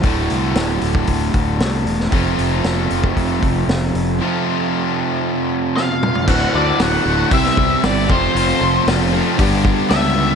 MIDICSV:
0, 0, Header, 1, 7, 480
1, 0, Start_track
1, 0, Tempo, 518583
1, 40, Time_signature, 4, 2, 24, 8
1, 9580, End_track
2, 0, Start_track
2, 0, Title_t, "Lead electric guitar"
2, 0, Program_c, 0, 29
2, 5334, Note_on_c, 0, 77, 81
2, 5779, Note_off_c, 0, 77, 0
2, 5820, Note_on_c, 0, 78, 102
2, 6039, Note_off_c, 0, 78, 0
2, 6067, Note_on_c, 0, 74, 96
2, 6305, Note_on_c, 0, 78, 98
2, 6306, Note_off_c, 0, 74, 0
2, 6744, Note_off_c, 0, 78, 0
2, 6790, Note_on_c, 0, 76, 89
2, 7226, Note_off_c, 0, 76, 0
2, 7258, Note_on_c, 0, 74, 89
2, 7500, Note_off_c, 0, 74, 0
2, 7503, Note_on_c, 0, 72, 86
2, 7740, Note_off_c, 0, 72, 0
2, 7751, Note_on_c, 0, 72, 78
2, 8186, Note_off_c, 0, 72, 0
2, 9160, Note_on_c, 0, 76, 92
2, 9580, Note_off_c, 0, 76, 0
2, 9580, End_track
3, 0, Start_track
3, 0, Title_t, "Steel-string acoustic guitar"
3, 0, Program_c, 1, 25
3, 5827, Note_on_c, 1, 54, 77
3, 5832, Note_on_c, 1, 62, 78
3, 6056, Note_off_c, 1, 62, 0
3, 6059, Note_off_c, 1, 54, 0
3, 6067, Note_on_c, 1, 62, 50
3, 6288, Note_on_c, 1, 54, 63
3, 6293, Note_off_c, 1, 62, 0
3, 6304, Note_on_c, 1, 62, 60
3, 6766, Note_off_c, 1, 54, 0
3, 6770, Note_off_c, 1, 62, 0
3, 6770, Note_on_c, 1, 52, 82
3, 7227, Note_off_c, 1, 52, 0
3, 7238, Note_on_c, 1, 52, 58
3, 7483, Note_off_c, 1, 52, 0
3, 7484, Note_on_c, 1, 69, 64
3, 7943, Note_off_c, 1, 69, 0
3, 7954, Note_on_c, 1, 69, 57
3, 8200, Note_off_c, 1, 69, 0
3, 8232, Note_on_c, 1, 69, 69
3, 8435, Note_off_c, 1, 69, 0
3, 8446, Note_on_c, 1, 69, 49
3, 8685, Note_off_c, 1, 69, 0
3, 9580, End_track
4, 0, Start_track
4, 0, Title_t, "Overdriven electric guitar"
4, 0, Program_c, 2, 29
4, 33, Note_on_c, 2, 38, 82
4, 44, Note_on_c, 2, 45, 77
4, 49, Note_on_c, 2, 50, 82
4, 53, Note_on_c, 2, 57, 85
4, 59, Note_on_c, 2, 66, 83
4, 1947, Note_off_c, 2, 38, 0
4, 1953, Note_off_c, 2, 45, 0
4, 1955, Note_off_c, 2, 50, 0
4, 1957, Note_on_c, 2, 41, 84
4, 1960, Note_off_c, 2, 66, 0
4, 1963, Note_on_c, 2, 48, 77
4, 1968, Note_on_c, 2, 53, 78
4, 1970, Note_off_c, 2, 57, 0
4, 1973, Note_on_c, 2, 57, 90
4, 1977, Note_on_c, 2, 60, 79
4, 1985, Note_on_c, 2, 65, 102
4, 3871, Note_off_c, 2, 41, 0
4, 3874, Note_off_c, 2, 48, 0
4, 3877, Note_off_c, 2, 53, 0
4, 3881, Note_off_c, 2, 60, 0
4, 3885, Note_off_c, 2, 65, 0
4, 3886, Note_on_c, 2, 41, 79
4, 3897, Note_on_c, 2, 48, 78
4, 3902, Note_off_c, 2, 57, 0
4, 3903, Note_on_c, 2, 53, 81
4, 3905, Note_on_c, 2, 57, 80
4, 3911, Note_on_c, 2, 60, 86
4, 3917, Note_on_c, 2, 65, 85
4, 5795, Note_off_c, 2, 41, 0
4, 5800, Note_off_c, 2, 48, 0
4, 5803, Note_off_c, 2, 53, 0
4, 5804, Note_off_c, 2, 57, 0
4, 5807, Note_off_c, 2, 60, 0
4, 5808, Note_on_c, 2, 38, 87
4, 5810, Note_off_c, 2, 65, 0
4, 5815, Note_on_c, 2, 45, 94
4, 5823, Note_on_c, 2, 50, 89
4, 5823, Note_on_c, 2, 57, 95
4, 5830, Note_on_c, 2, 66, 102
4, 6039, Note_off_c, 2, 66, 0
4, 6050, Note_on_c, 2, 66, 61
4, 6051, Note_off_c, 2, 57, 0
4, 6062, Note_on_c, 2, 57, 64
4, 6065, Note_off_c, 2, 50, 0
4, 6076, Note_on_c, 2, 50, 51
4, 6281, Note_off_c, 2, 45, 0
4, 6289, Note_off_c, 2, 38, 0
4, 6289, Note_off_c, 2, 50, 0
4, 6292, Note_on_c, 2, 45, 68
4, 6298, Note_off_c, 2, 57, 0
4, 6301, Note_on_c, 2, 50, 72
4, 6304, Note_off_c, 2, 66, 0
4, 6309, Note_on_c, 2, 57, 72
4, 6315, Note_on_c, 2, 66, 77
4, 6519, Note_off_c, 2, 66, 0
4, 6530, Note_on_c, 2, 66, 67
4, 6531, Note_off_c, 2, 57, 0
4, 6542, Note_on_c, 2, 57, 58
4, 6545, Note_off_c, 2, 50, 0
4, 6557, Note_on_c, 2, 50, 56
4, 6755, Note_off_c, 2, 66, 0
4, 6756, Note_off_c, 2, 45, 0
4, 6761, Note_off_c, 2, 57, 0
4, 6764, Note_on_c, 2, 48, 89
4, 6768, Note_off_c, 2, 50, 0
4, 6769, Note_on_c, 2, 55, 88
4, 6772, Note_on_c, 2, 60, 81
4, 6779, Note_on_c, 2, 64, 88
4, 6782, Note_on_c, 2, 67, 105
4, 6785, Note_on_c, 2, 72, 100
4, 7230, Note_off_c, 2, 48, 0
4, 7237, Note_off_c, 2, 55, 0
4, 7240, Note_off_c, 2, 60, 0
4, 7241, Note_on_c, 2, 48, 82
4, 7246, Note_off_c, 2, 64, 0
4, 7248, Note_on_c, 2, 55, 77
4, 7251, Note_off_c, 2, 67, 0
4, 7252, Note_on_c, 2, 60, 92
4, 7253, Note_off_c, 2, 72, 0
4, 7257, Note_on_c, 2, 64, 86
4, 7262, Note_on_c, 2, 67, 96
4, 7265, Note_on_c, 2, 72, 90
4, 7470, Note_off_c, 2, 48, 0
4, 7473, Note_off_c, 2, 55, 0
4, 7475, Note_off_c, 2, 60, 0
4, 7478, Note_off_c, 2, 64, 0
4, 7481, Note_off_c, 2, 67, 0
4, 7482, Note_off_c, 2, 72, 0
4, 7487, Note_on_c, 2, 65, 74
4, 7494, Note_on_c, 2, 60, 75
4, 7497, Note_on_c, 2, 57, 71
4, 7502, Note_on_c, 2, 53, 82
4, 7503, Note_on_c, 2, 48, 68
4, 7508, Note_on_c, 2, 41, 65
4, 7710, Note_off_c, 2, 41, 0
4, 7717, Note_off_c, 2, 48, 0
4, 7721, Note_on_c, 2, 41, 89
4, 7723, Note_off_c, 2, 53, 0
4, 7728, Note_off_c, 2, 57, 0
4, 7728, Note_on_c, 2, 48, 91
4, 7734, Note_off_c, 2, 60, 0
4, 7734, Note_on_c, 2, 53, 88
4, 7737, Note_off_c, 2, 65, 0
4, 7739, Note_on_c, 2, 57, 94
4, 7746, Note_on_c, 2, 60, 99
4, 7748, Note_on_c, 2, 65, 106
4, 7956, Note_off_c, 2, 65, 0
4, 7967, Note_on_c, 2, 65, 70
4, 7968, Note_off_c, 2, 60, 0
4, 7978, Note_off_c, 2, 57, 0
4, 7979, Note_on_c, 2, 60, 68
4, 7985, Note_off_c, 2, 53, 0
4, 7989, Note_on_c, 2, 57, 62
4, 7996, Note_on_c, 2, 53, 63
4, 8196, Note_off_c, 2, 53, 0
4, 8203, Note_off_c, 2, 41, 0
4, 8207, Note_off_c, 2, 48, 0
4, 8207, Note_on_c, 2, 53, 61
4, 8208, Note_off_c, 2, 57, 0
4, 8212, Note_off_c, 2, 60, 0
4, 8219, Note_off_c, 2, 65, 0
4, 8219, Note_on_c, 2, 57, 80
4, 8223, Note_on_c, 2, 60, 66
4, 8230, Note_on_c, 2, 65, 78
4, 8430, Note_off_c, 2, 65, 0
4, 8441, Note_on_c, 2, 65, 61
4, 8443, Note_off_c, 2, 60, 0
4, 8449, Note_off_c, 2, 57, 0
4, 8454, Note_on_c, 2, 60, 67
4, 8455, Note_off_c, 2, 53, 0
4, 8460, Note_on_c, 2, 57, 62
4, 8466, Note_on_c, 2, 53, 61
4, 8669, Note_off_c, 2, 65, 0
4, 8675, Note_off_c, 2, 60, 0
4, 8677, Note_on_c, 2, 43, 94
4, 8678, Note_off_c, 2, 57, 0
4, 8680, Note_on_c, 2, 50, 92
4, 8681, Note_off_c, 2, 53, 0
4, 8686, Note_on_c, 2, 55, 88
4, 8691, Note_on_c, 2, 59, 95
4, 8696, Note_on_c, 2, 62, 99
4, 8703, Note_on_c, 2, 67, 95
4, 9146, Note_off_c, 2, 43, 0
4, 9153, Note_off_c, 2, 50, 0
4, 9156, Note_off_c, 2, 55, 0
4, 9157, Note_on_c, 2, 43, 80
4, 9165, Note_off_c, 2, 59, 0
4, 9165, Note_on_c, 2, 50, 85
4, 9167, Note_off_c, 2, 62, 0
4, 9168, Note_on_c, 2, 55, 98
4, 9172, Note_off_c, 2, 67, 0
4, 9176, Note_on_c, 2, 59, 92
4, 9178, Note_on_c, 2, 62, 88
4, 9183, Note_on_c, 2, 67, 94
4, 9388, Note_off_c, 2, 67, 0
4, 9399, Note_off_c, 2, 62, 0
4, 9399, Note_on_c, 2, 67, 67
4, 9406, Note_off_c, 2, 59, 0
4, 9410, Note_on_c, 2, 62, 67
4, 9414, Note_off_c, 2, 55, 0
4, 9417, Note_on_c, 2, 59, 63
4, 9425, Note_on_c, 2, 55, 56
4, 9580, Note_off_c, 2, 43, 0
4, 9580, Note_off_c, 2, 50, 0
4, 9580, Note_off_c, 2, 55, 0
4, 9580, Note_off_c, 2, 59, 0
4, 9580, Note_off_c, 2, 62, 0
4, 9580, Note_off_c, 2, 67, 0
4, 9580, End_track
5, 0, Start_track
5, 0, Title_t, "Overdriven electric guitar"
5, 0, Program_c, 3, 29
5, 8458, Note_on_c, 3, 48, 77
5, 8473, Note_on_c, 3, 41, 66
5, 8672, Note_off_c, 3, 41, 0
5, 8677, Note_off_c, 3, 48, 0
5, 9580, End_track
6, 0, Start_track
6, 0, Title_t, "Fingered electric bass"
6, 0, Program_c, 4, 33
6, 33, Note_on_c, 4, 26, 80
6, 262, Note_off_c, 4, 26, 0
6, 279, Note_on_c, 4, 36, 74
6, 505, Note_off_c, 4, 36, 0
6, 519, Note_on_c, 4, 26, 78
6, 746, Note_off_c, 4, 26, 0
6, 760, Note_on_c, 4, 26, 81
6, 986, Note_off_c, 4, 26, 0
6, 999, Note_on_c, 4, 26, 77
6, 1226, Note_off_c, 4, 26, 0
6, 1242, Note_on_c, 4, 26, 71
6, 1468, Note_off_c, 4, 26, 0
6, 1477, Note_on_c, 4, 36, 88
6, 1706, Note_off_c, 4, 36, 0
6, 1718, Note_on_c, 4, 28, 77
6, 1946, Note_off_c, 4, 28, 0
6, 1965, Note_on_c, 4, 29, 84
6, 2190, Note_off_c, 4, 29, 0
6, 2206, Note_on_c, 4, 29, 72
6, 2431, Note_off_c, 4, 29, 0
6, 2448, Note_on_c, 4, 29, 79
6, 2672, Note_off_c, 4, 29, 0
6, 2689, Note_on_c, 4, 29, 79
6, 2913, Note_off_c, 4, 29, 0
6, 2930, Note_on_c, 4, 29, 73
6, 3154, Note_off_c, 4, 29, 0
6, 3173, Note_on_c, 4, 29, 74
6, 3396, Note_off_c, 4, 29, 0
6, 3407, Note_on_c, 4, 29, 89
6, 3633, Note_off_c, 4, 29, 0
6, 3649, Note_on_c, 4, 29, 78
6, 3874, Note_off_c, 4, 29, 0
6, 5814, Note_on_c, 4, 26, 94
6, 5968, Note_off_c, 4, 26, 0
6, 6054, Note_on_c, 4, 38, 80
6, 6207, Note_off_c, 4, 38, 0
6, 6292, Note_on_c, 4, 26, 80
6, 6446, Note_off_c, 4, 26, 0
6, 6530, Note_on_c, 4, 26, 84
6, 6685, Note_off_c, 4, 26, 0
6, 6771, Note_on_c, 4, 36, 86
6, 6925, Note_off_c, 4, 36, 0
6, 7012, Note_on_c, 4, 36, 86
6, 7165, Note_off_c, 4, 36, 0
6, 7252, Note_on_c, 4, 31, 100
6, 7494, Note_off_c, 4, 31, 0
6, 7494, Note_on_c, 4, 29, 86
6, 7647, Note_off_c, 4, 29, 0
6, 7728, Note_on_c, 4, 29, 85
6, 7882, Note_off_c, 4, 29, 0
6, 7970, Note_on_c, 4, 29, 83
6, 8124, Note_off_c, 4, 29, 0
6, 8210, Note_on_c, 4, 29, 83
6, 8518, Note_off_c, 4, 29, 0
6, 8693, Note_on_c, 4, 31, 87
6, 8999, Note_off_c, 4, 31, 0
6, 9170, Note_on_c, 4, 37, 95
6, 9580, Note_off_c, 4, 37, 0
6, 9580, End_track
7, 0, Start_track
7, 0, Title_t, "Drums"
7, 29, Note_on_c, 9, 46, 58
7, 35, Note_on_c, 9, 36, 93
7, 121, Note_off_c, 9, 46, 0
7, 128, Note_off_c, 9, 36, 0
7, 275, Note_on_c, 9, 46, 42
7, 368, Note_off_c, 9, 46, 0
7, 513, Note_on_c, 9, 46, 65
7, 517, Note_on_c, 9, 38, 96
7, 606, Note_off_c, 9, 46, 0
7, 609, Note_off_c, 9, 38, 0
7, 752, Note_on_c, 9, 46, 45
7, 845, Note_off_c, 9, 46, 0
7, 877, Note_on_c, 9, 36, 81
7, 970, Note_off_c, 9, 36, 0
7, 993, Note_on_c, 9, 46, 58
7, 999, Note_on_c, 9, 36, 80
7, 1085, Note_off_c, 9, 46, 0
7, 1092, Note_off_c, 9, 36, 0
7, 1237, Note_on_c, 9, 46, 50
7, 1242, Note_on_c, 9, 36, 80
7, 1330, Note_off_c, 9, 46, 0
7, 1335, Note_off_c, 9, 36, 0
7, 1483, Note_on_c, 9, 46, 62
7, 1487, Note_on_c, 9, 38, 103
7, 1575, Note_off_c, 9, 46, 0
7, 1579, Note_off_c, 9, 38, 0
7, 1727, Note_on_c, 9, 46, 47
7, 1820, Note_off_c, 9, 46, 0
7, 1850, Note_on_c, 9, 38, 29
7, 1943, Note_off_c, 9, 38, 0
7, 1959, Note_on_c, 9, 46, 53
7, 1964, Note_on_c, 9, 36, 88
7, 2052, Note_off_c, 9, 46, 0
7, 2057, Note_off_c, 9, 36, 0
7, 2205, Note_on_c, 9, 46, 44
7, 2298, Note_off_c, 9, 46, 0
7, 2445, Note_on_c, 9, 46, 55
7, 2449, Note_on_c, 9, 38, 93
7, 2537, Note_off_c, 9, 46, 0
7, 2541, Note_off_c, 9, 38, 0
7, 2687, Note_on_c, 9, 46, 45
7, 2779, Note_off_c, 9, 46, 0
7, 2810, Note_on_c, 9, 36, 84
7, 2903, Note_off_c, 9, 36, 0
7, 2932, Note_on_c, 9, 36, 72
7, 2934, Note_on_c, 9, 46, 54
7, 3024, Note_off_c, 9, 36, 0
7, 3026, Note_off_c, 9, 46, 0
7, 3171, Note_on_c, 9, 36, 76
7, 3172, Note_on_c, 9, 46, 47
7, 3264, Note_off_c, 9, 36, 0
7, 3264, Note_off_c, 9, 46, 0
7, 3415, Note_on_c, 9, 46, 62
7, 3419, Note_on_c, 9, 38, 96
7, 3508, Note_off_c, 9, 46, 0
7, 3512, Note_off_c, 9, 38, 0
7, 3655, Note_on_c, 9, 46, 47
7, 3748, Note_off_c, 9, 46, 0
7, 5340, Note_on_c, 9, 38, 50
7, 5432, Note_off_c, 9, 38, 0
7, 5580, Note_on_c, 9, 45, 77
7, 5673, Note_off_c, 9, 45, 0
7, 5694, Note_on_c, 9, 43, 71
7, 5786, Note_off_c, 9, 43, 0
7, 5809, Note_on_c, 9, 49, 100
7, 5810, Note_on_c, 9, 36, 91
7, 5901, Note_off_c, 9, 49, 0
7, 5903, Note_off_c, 9, 36, 0
7, 6290, Note_on_c, 9, 46, 58
7, 6294, Note_on_c, 9, 38, 106
7, 6382, Note_off_c, 9, 46, 0
7, 6386, Note_off_c, 9, 38, 0
7, 6767, Note_on_c, 9, 46, 57
7, 6770, Note_on_c, 9, 36, 93
7, 6860, Note_off_c, 9, 46, 0
7, 6863, Note_off_c, 9, 36, 0
7, 6898, Note_on_c, 9, 38, 33
7, 6990, Note_off_c, 9, 38, 0
7, 7010, Note_on_c, 9, 36, 80
7, 7103, Note_off_c, 9, 36, 0
7, 7251, Note_on_c, 9, 46, 55
7, 7255, Note_on_c, 9, 38, 106
7, 7344, Note_off_c, 9, 46, 0
7, 7347, Note_off_c, 9, 38, 0
7, 7493, Note_on_c, 9, 36, 108
7, 7586, Note_off_c, 9, 36, 0
7, 7740, Note_on_c, 9, 46, 57
7, 7832, Note_off_c, 9, 46, 0
7, 8215, Note_on_c, 9, 46, 59
7, 8218, Note_on_c, 9, 38, 105
7, 8307, Note_off_c, 9, 46, 0
7, 8311, Note_off_c, 9, 38, 0
7, 8692, Note_on_c, 9, 36, 103
7, 8694, Note_on_c, 9, 46, 59
7, 8784, Note_off_c, 9, 36, 0
7, 8786, Note_off_c, 9, 46, 0
7, 8930, Note_on_c, 9, 36, 78
7, 9022, Note_off_c, 9, 36, 0
7, 9167, Note_on_c, 9, 46, 57
7, 9170, Note_on_c, 9, 38, 107
7, 9259, Note_off_c, 9, 46, 0
7, 9263, Note_off_c, 9, 38, 0
7, 9580, End_track
0, 0, End_of_file